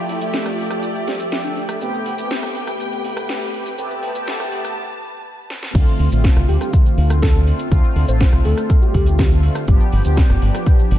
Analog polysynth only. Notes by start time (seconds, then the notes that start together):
Already playing: F3 A3 E4 G4
0.20 F3 A3 G4 E5
1.81 C3 A3 B3 G4
2.17 C3 A3 B3 G4
3.77 C3 A3 B3 G4
4.14 C3 A3 B3 G4
5.74 D3 A3 C4 F4
6.11 D3 A3 C4 F4
7.35 D3 A3 C4 F4
7.71 D3 A3 C4 F4
8.08 D3 A3 C4 F4
9.31 D3 A3 C4 F4
9.68 F3 B3 D4 G4
10.04 F3 B3 D4 G4